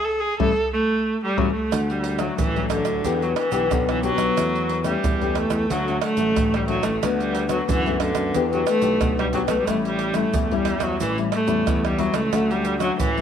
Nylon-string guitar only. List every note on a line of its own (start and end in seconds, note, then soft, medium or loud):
0.40 0.51 G3 medium
0.40 0.50 A3 loud
0.40 0.50 C#4 medium
1.38 1.49 G3 loud
1.38 1.49 A3 loud
1.38 1.49 C#4 loud
1.72 2.35 D3 medium
2.19 2.48 F#3 medium
2.19 2.49 A3 medium
2.19 2.49 D4 medium
2.38 3.01 A2 medium
2.56 3.00 F#3 medium
2.56 3.00 A3 medium
2.56 3.00 D4 medium
3.05 3.68 E3 medium
3.05 3.49 B3 medium
3.05 3.50 D4 medium
3.05 3.50 G4 medium
3.52 3.98 B3 medium
3.52 3.98 D4 medium
3.52 3.98 G4 medium
3.71 4.34 B2 medium
4.03 4.32 B3 medium
4.03 4.32 D4 medium
4.03 4.32 G4 medium
4.37 5.01 E3 medium
4.37 4.69 A3 medium
4.37 4.69 C#4 medium
4.84 5.14 A3 medium
4.84 5.14 C#4 medium
4.84 5.14 G4 medium
5.03 5.67 E3 medium
5.21 5.68 A3 medium
5.21 5.68 C#4 medium
5.21 5.68 G4 medium
5.70 6.33 D3 medium
5.70 5.80 F#3 medium
5.70 5.80 A3 medium
5.70 5.81 D4 medium
5.88 6.15 F#3 medium
5.88 6.15 A3 medium
5.88 6.15 D4 medium
6.17 6.63 F#3 medium
6.17 6.63 A3 medium
6.17 6.63 D4 medium
6.37 7.00 A2 medium
6.68 6.89 F#3 medium
6.68 6.89 A3 medium
6.68 6.89 D4 medium
7.03 7.66 D3 medium
7.03 7.34 A3 medium
7.03 7.34 B3 medium
7.03 7.34 F#4 medium
7.49 7.79 A3 medium
7.49 7.79 B3 medium
7.49 7.79 F#4 medium
7.69 8.32 D3 medium
7.87 8.33 A3 medium
7.87 8.33 B3 medium
7.87 8.34 F#4 medium
8.35 8.98 E3 medium
8.35 8.45 B3 medium
8.35 8.45 D4 soft
8.35 8.46 G4 medium
8.53 8.80 B3 medium
8.53 8.80 D4 medium
8.53 8.81 G4 medium
8.81 9.28 B3 medium
8.81 9.28 D4 medium
8.81 9.28 G4 medium
9.01 9.65 B2 medium
9.33 9.53 B3 medium
9.33 9.53 D4 medium
9.33 9.54 G4 medium
9.68 10.31 A2 medium
9.68 10.12 G3 medium
9.68 10.13 C#4 medium
9.68 10.13 E4 medium
10.15 10.44 G3 medium
10.15 10.44 C#4 medium
10.15 10.45 E4 medium
10.34 10.97 E3 medium
10.52 11.12 G3 medium
10.52 11.12 C#4 medium
10.52 11.13 E4 medium
11.01 11.64 A2 medium
11.18 11.45 G3 medium
11.18 11.46 C#4 medium
11.18 11.46 E4 medium
11.47 11.93 G3 medium
11.47 11.93 C#4 medium
11.47 11.94 E4 medium
11.67 12.30 E3 medium
11.98 12.19 G3 medium
11.98 12.19 C#4 medium
11.98 12.19 E4 medium
12.33 12.96 D3 medium
12.33 12.64 F#3 medium
12.33 12.65 A3 medium
12.33 12.65 C#4 medium
12.80 13.09 F#3 medium
12.80 13.09 A3 medium
12.80 13.10 C#4 medium
12.99 13.21 A2 medium
13.17 13.21 F#3 medium
13.17 13.21 A3 medium